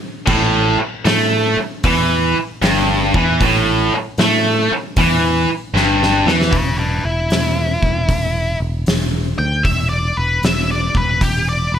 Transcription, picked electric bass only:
0.28 0.76 A1 loud
0.79 muted picked electric bass stroke soft
1.05 1.54 A2 loud
1.57 muted picked electric bass stroke soft
1.84 2.33 E2 medium
2.62 3.11 G1 loud
3.14 3.39 E2 loud
3.41 3.89 A1 loud
4.18 4.67 A2 medium
4.72 muted picked electric bass stroke soft
4.97 5.45 E2 medium
5.74 6.23 G1 medium
6.26 6.51 E2 medium
6.53 6.99 E1 loud
7.05 7.28 E1 medium
7.30 7.76 E1 medium
7.82 8.06 E1 medium
8.09 8.55 E1 medium
8.60 8.84 E1 medium
8.87 9.33 E1 medium
9.39 9.62 D2 medium
9.64 10.11 E1 medium
10.17 10.40 E1 medium
10.42 10.88 E1 medium
10.95 11.18 E1 medium
11.21 11.67 E1 medium
11.72 11.79 E1 medium

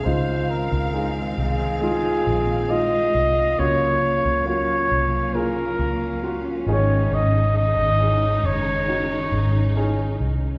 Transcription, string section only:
0.00 6.63 F5 medium
0.06 3.55 D#3 medium
0.06 3.55 G#3 medium
0.06 3.55 C4 medium
3.58 6.64 F#3 medium
3.58 6.64 A#3 medium
3.58 10.58 C#4 medium
6.68 10.58 D#3 medium
6.68 10.58 G#3 medium
6.68 10.58 D#4 medium

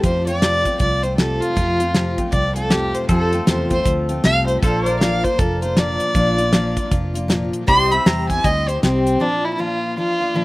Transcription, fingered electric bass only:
0.04 0.63 F2 medium
0.80 1.39 C2 medium
1.57 2.16 F2 medium
2.32 2.92 C2 medium
3.09 3.39 F2 medium
3.48 3.80 E2 medium
3.86 4.18 D2 medium
4.24 4.57 C2 medium
4.63 5.22 A#1 medium
5.39 5.98 F1 medium
6.15 6.74 A#1 medium
6.92 7.51 F1 medium
7.68 7.98 C2 medium
8.06 8.39 E2 medium
8.44 8.77 D2 medium
8.83 9.15 C2 medium

